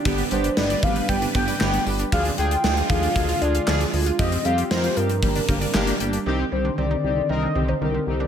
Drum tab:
HH |xxxx-xxxxxxx-xox|xxxx-xxxxxxx-xox|xxxx-xxxxxxx-xxx|----------------|
CP |------------x---|------------x---|------------x---|----------------|
SD |----o-------o---|----o-------o---|----o-------o---|----------------|
BD |o-----o-o-o-----|o-----o-o-------|o-------o-o-----|----------------|